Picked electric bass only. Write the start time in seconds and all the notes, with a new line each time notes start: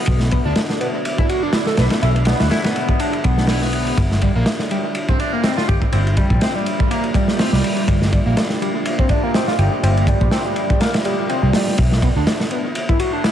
0.08 B1
0.45 D2
1.78 B1
2.03 B1
2.41 D2
3.25 B1
3.98 G1
4.36 A#1
5.69 G1
5.93 G1
6.30 A#1
7.53 C2
7.88 G1
8.26 A#1
9.59 G1
9.83 G1
10.21 A#1
11.43 C2
11.79 B1
12.16 D2